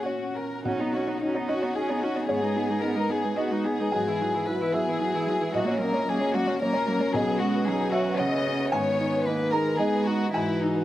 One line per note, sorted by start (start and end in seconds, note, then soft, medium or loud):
0.00 0.62 A#2 soft
0.00 0.36 C#4 soft
0.00 0.65 C#4 medium
0.00 0.06 F#4 soft
0.00 0.66 F#4 medium
0.00 0.06 C#5 soft
0.00 0.65 F#5 soft
0.00 0.66 F#5 medium
0.00 0.68 G#5 medium
0.05 0.35 F#4 soft
0.05 0.54 F#4 soft
0.05 0.62 C#5 medium
0.36 0.66 C#4 soft
0.36 0.66 A#4 soft
0.65 2.25 B1 medium
0.65 2.25 C#4 medium
0.65 0.82 C#4 soft
0.65 0.92 D#4 medium
0.65 0.81 F#4 soft
0.65 2.25 F#4 medium
0.65 3.91 D#5 medium
0.65 1.44 F#5 medium
0.79 0.97 B3 soft
0.79 0.95 D#4 soft
0.79 1.02 C#5 soft
0.93 1.10 C#4 soft
0.93 1.16 D#4 soft
0.93 1.09 F#4 soft
0.93 1.21 F#4 medium
1.07 1.22 B3 soft
1.07 1.21 D#4 soft
1.07 1.29 C#5 soft
1.20 1.38 C#4 soft
1.20 1.48 D#4 medium
1.20 1.43 D#4 soft
1.20 1.36 F#4 soft
1.35 1.51 B3 soft
1.35 1.50 D#4 soft
1.35 1.56 C#5 soft
1.48 1.64 C#4 soft
1.48 1.70 D#4 soft
1.48 1.75 F#4 medium
1.48 1.63 F#4 soft
1.48 2.25 D#5 medium
1.62 1.76 B3 soft
1.62 1.75 D#4 soft
1.62 1.83 C#5 soft
1.75 1.91 C#4 soft
1.75 1.97 D#4 soft
1.75 1.90 F#4 soft
1.75 2.02 G#4 medium
1.89 2.05 B3 soft
1.89 2.05 D#4 soft
1.89 2.10 C#5 soft
2.02 2.18 C#4 soft
2.02 2.24 D#4 soft
2.02 2.29 F#4 medium
2.02 2.18 F#4 soft
2.15 2.27 B3 soft
2.15 2.28 D#4 soft
2.15 2.27 C#5 soft
2.28 3.90 G#2 medium
2.28 2.44 B3 medium
2.28 5.55 B3 medium
2.28 2.81 G#4 medium
2.28 2.44 G#4 medium
2.28 3.94 G#4 medium
2.28 3.33 C#5 medium
2.42 2.58 G#3 soft
2.42 2.58 D#4 soft
2.42 2.64 B4 soft
2.56 2.71 B3 medium
2.56 2.77 D#4 soft
2.56 2.71 G#4 medium
2.69 2.82 G#3 soft
2.69 2.82 D#4 soft
2.69 2.91 B4 soft
2.82 2.97 B3 medium
2.82 3.04 D#4 medium
2.82 2.98 G#4 soft
2.82 3.10 A#4 medium
2.96 3.10 G#3 soft
2.96 3.11 D#4 soft
2.96 3.18 B4 soft
3.09 3.26 B3 medium
3.09 3.32 D#4 soft
3.09 3.25 G#4 soft
3.09 3.37 G#4 medium
3.23 3.37 G#3 soft
3.23 3.36 D#4 soft
3.23 3.45 B4 soft
3.36 3.53 B3 medium
3.36 3.59 D#4 soft
3.36 3.65 F#4 medium
3.36 3.53 G#4 soft
3.36 3.90 D#5 medium
3.51 3.66 G#3 soft
3.51 3.67 D#4 soft
3.51 3.74 B4 soft
3.64 3.81 B3 soft
3.64 3.88 D#4 soft
3.64 3.82 G#4 soft
3.64 4.49 G#4 medium
3.79 3.93 G#3 soft
3.79 3.93 D#4 soft
3.79 3.94 B4 soft
3.92 5.51 G#2 medium
3.92 4.07 F#3 medium
3.92 8.71 F#4 medium
3.92 4.09 F#4 medium
3.92 5.55 E5 medium
3.92 4.70 G#5 medium
4.06 4.22 E3 soft
4.06 4.23 E4 soft
4.06 4.29 B4 soft
4.21 4.36 F#3 medium
4.21 4.43 E4 soft
4.21 4.36 F#4 medium
4.34 4.47 E3 soft
4.34 4.47 E4 medium
4.34 4.56 B4 medium
4.47 4.62 F#3 medium
4.47 4.69 E4 medium
4.47 4.62 F#4 medium
4.47 4.75 B4 medium
4.60 4.75 E3 medium
4.60 4.75 E4 medium
4.60 4.83 B4 soft
4.74 4.89 F#3 medium
4.74 4.96 E4 soft
4.74 4.90 F#4 soft
4.74 5.55 G#4 medium
4.74 5.51 E5 medium
4.87 4.99 E3 medium
4.87 5.01 E4 medium
4.87 5.09 B4 medium
4.99 5.14 F#3 medium
4.99 5.22 E4 medium
4.99 5.16 F#4 medium
5.13 5.27 E3 medium
5.13 5.30 E4 medium
5.13 5.36 B4 soft
5.26 5.41 F#3 medium
5.26 5.50 E4 medium
5.26 5.43 F#4 medium
5.39 5.52 E3 medium
5.39 5.55 E4 medium
5.39 5.55 B4 medium
5.53 7.10 A#1 medium
5.53 5.67 F#3 medium
5.53 5.70 A#3 medium
5.53 8.71 C#4 medium
5.53 5.82 F#4 medium
5.53 7.14 C#5 medium
5.53 6.57 D#5 medium
5.65 5.81 A#3 medium
5.65 5.82 C#4 medium
5.65 5.89 C#5 medium
5.79 5.95 F#3 medium
5.79 5.96 A#3 medium
5.79 6.03 C#4 medium
5.79 6.07 A#4 medium
5.94 6.06 A#3 medium
5.94 6.07 C#4 medium
5.94 6.16 C#5 medium
6.06 6.22 F#3 medium
6.06 6.22 A#3 medium
6.06 6.29 C#4 medium
6.06 6.36 G#4 medium
6.20 6.38 A#3 medium
6.20 6.36 C#4 medium
6.20 6.42 C#5 medium
6.33 6.50 F#3 medium
6.33 6.49 A#3 medium
6.33 6.55 C#4 medium
6.33 6.62 F#4 medium
6.47 6.62 A#3 medium
6.47 6.61 C#4 medium
6.47 6.60 C#5 medium
6.60 6.76 F#3 medium
6.60 6.75 A#3 medium
6.60 6.82 C#4 medium
6.60 7.14 A#4 medium
6.60 6.72 C#5 medium
6.73 6.90 A#3 medium
6.73 6.89 C#4 medium
6.73 6.95 C#5 soft
6.87 7.02 F#3 medium
6.87 7.02 A#3 medium
6.87 7.09 C#4 medium
7.00 7.14 A#3 medium
7.00 7.13 C#4 medium
7.00 7.14 C#5 medium
7.14 8.68 B1 medium
7.14 7.42 F#3 medium
7.14 7.67 B3 medium
7.14 7.41 G#4 medium
7.14 10.84 B4 medium
7.14 7.89 D#5 medium
7.27 7.49 B4 medium
7.40 7.68 G#3 medium
7.40 7.62 C#4 medium
7.40 7.66 F#4 medium
7.54 7.75 B4 medium
7.66 8.21 F#3 medium
7.66 7.88 C#4 medium
7.66 7.91 D#4 medium
7.66 7.93 G#4 medium
7.81 8.01 B4 medium
7.92 8.73 C#4 medium
7.92 8.14 C#4 medium
7.92 8.19 F#4 medium
7.92 8.16 E5 medium
8.06 8.27 B4 medium
8.19 8.74 C#3 medium
8.19 8.40 C#4 medium
8.19 8.72 D#5 medium
8.19 8.68 F#5 medium
8.33 8.54 B4 medium
8.47 8.67 C#4 medium
8.59 8.72 B4 medium
8.71 10.31 G#2 medium
8.71 9.26 D#3 medium
8.71 9.27 B3 medium
8.71 10.34 D#4 medium
8.71 10.34 G#4 medium
8.71 9.24 C#5 medium
8.71 9.48 G#5 loud
8.87 9.08 B4 medium
9.00 9.21 D#4 medium
9.14 9.35 B4 medium
9.24 9.80 D#3 medium
9.24 9.53 A#3 medium
9.24 9.48 D#4 medium
9.24 9.51 B4 medium
9.41 9.61 B4 medium
9.52 9.78 G#3 medium
9.52 9.73 D#4 medium
9.52 9.78 A#4 medium
9.52 9.77 A#5 medium
9.65 9.87 B4 medium
9.78 10.34 G#3 medium
9.78 10.33 B3 medium
9.78 10.01 D#4 medium
9.78 10.06 G#4 medium
9.78 10.30 D#5 medium
9.93 10.15 B4 medium
10.05 10.29 D#4 medium
10.05 10.34 F#4 medium
10.21 10.35 B4 medium
10.34 10.84 G#2 medium
10.34 10.84 E3 medium
10.34 10.61 E4 medium
10.34 10.84 E4 medium
10.34 10.84 F#4 medium
10.34 10.84 G#5 medium
10.48 10.69 B4 soft
10.62 10.84 D#4 medium
10.62 10.83 E4 medium
10.75 10.84 B4 medium